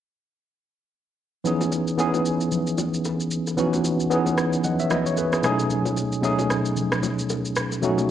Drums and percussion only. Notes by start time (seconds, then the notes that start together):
1.45 low conga, shaker
1.61 low bongo, shaker
1.72 low bongo, shaker
1.88 shaker
1.99 high bongo, shaker
2.14 low bongo, shaker
2.26 shaker
2.41 shaker
2.52 low conga, shaker
2.67 shaker
2.78 low bongo, low conga, shaker
2.94 shaker
3.05 high bongo, shaker
3.20 shaker
3.31 shaker
3.47 high bongo, shaker
3.58 low conga, shaker
3.73 low bongo, shaker
3.84 low bongo, shaker
4.00 shaker
4.11 high bongo, shaker
4.26 low bongo, shaker
4.38 cross-stick, shaker
4.53 shaker
4.64 low conga, shaker
4.80 shaker
4.91 cross-stick, low bongo, low conga, shaker
5.06 shaker
5.17 high bongo, shaker
5.33 cross-stick, shaker
5.43 cross-stick, shaker
5.59 high bongo, shaker
5.70 low conga, shaker
5.86 low bongo, shaker
5.97 low bongo, shaker
6.12 shaker
6.23 high bongo, shaker
6.39 low bongo, shaker
6.50 cross-stick, shaker
6.65 shaker
6.77 low conga, shaker
6.92 cross-stick, shaker
7.03 low bongo, low conga, shaker
7.19 shaker
7.30 high bongo, shaker
7.45 shaker
7.56 cross-stick, shaker
7.72 high bongo, shaker
7.83 low conga, shaker
7.98 low bongo, shaker